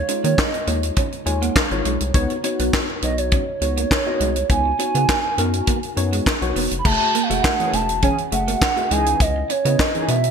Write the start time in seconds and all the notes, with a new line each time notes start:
Already playing: C#5
0.08 G#3 C#4 D#4 F4 C#5, closed hi-hat
0.24 D#3 A#3 C#5, closed hi-hat
0.38 D#5, kick, snare, clap
0.54 closed hi-hat
0.67 D#2 G#3 A#3 D#4 F4 C#5, closed hi-hat
0.83 closed hi-hat
0.96 C#4, kick, closed hi-hat
1.12 closed hi-hat
1.26 D#2 G#3 D#4 F4 C#5 G#5, muted clean electric guitar stroke, closed hi-hat
1.42 A#3 F#5, closed hi-hat
1.56 F5, kick, snare, clap
1.71 G#1 G#3 D#4 F4 C#5, closed hi-hat
1.85 B1 G#3 C#5, closed hi-hat
2.00 C2, closed hi-hat
2.14 C#2 B3 D#4 F#4 C#5, kick, closed hi-hat
2.30 muted clean electric guitar stroke, closed hi-hat
2.43 B3 C#4 D#4 F#4 C#5, closed hi-hat
2.59 B1 B3, closed hi-hat
2.73 kick, snare, clap
3.02 B1 B3 D#4 F#4 C#5 D#5, closed hi-hat
3.18 C#5, closed hi-hat
3.31 C#4, kick, closed hi-hat
3.61 C#2 B3 D#4 F#4 C#5, muted clean electric guitar stroke, closed hi-hat
3.77 A#3, closed hi-hat
3.91 kick, snare, clap
4.06 B3 D#4 F#4 D#5
4.20 C2 G#3, closed hi-hat
4.36 closed hi-hat
4.49 C#2 B3 D#4 F#4 C#5 G#5, kick, closed hi-hat
4.65 muted clean electric guitar stroke
4.78 B3 C#4 D#4 F#4 C#5, closed hi-hat
4.95 C#3 B3, closed hi-hat
5.09 kick, snare, clap
5.37 F#2 B3 D#4 F#4 A#4, closed hi-hat
5.53 closed hi-hat
5.67 A#3, kick, closed hi-hat
5.83 closed hi-hat
5.96 F#2 B3 D#4 F#4 C#5, muted clean electric guitar stroke, closed hi-hat
6.13 G#3, closed hi-hat
6.26 kick, snare, clap
6.41 B1 B3 D#4 F#4 C#5, closed hi-hat
6.55 E1 B3, open hi-hat
6.71 F1, closed hi-hat
6.79 B5
6.84 F#1 A3 F#4 G#4 E5 A5, kick, crash
7.01 muted clean electric guitar stroke
7.15 A#3, closed hi-hat
7.23 F5
7.30 E1 A3 F#4 G#4 E5 F#5, closed hi-hat
7.44 kick, snare, clap
7.59 E3 C#4 G#4, closed hi-hat
7.73 E1 A3 A5, closed hi-hat
7.89 closed hi-hat
8.02 E3 C#4 G#4 G#5, kick, closed hi-hat
8.18 closed hi-hat
8.31 F#1 A3 F#4 G#4 E5 F#5, muted clean electric guitar stroke, closed hi-hat
8.48 A#3, closed hi-hat
8.62 kick, snare, clap
8.76 A3 F#4 G#4 E5, closed hi-hat
8.90 C#2 E3 G#3 C#4 D#4 E4 G#4 B4 D#5 G#5, closed hi-hat
9.06 closed hi-hat
9.20 C#2 D#5, kick, closed hi-hat
9.36 muted clean electric guitar stroke
9.50 C#4 C#5, closed hi-hat
9.65 C#3 B3 C#4 E4 B4 D#5, closed hi-hat
9.79 D#5, kick, snare, clap
9.95 E3 D#4 G#4, closed hi-hat
10.08 B2 B3 E5, closed hi-hat
10.24 closed hi-hat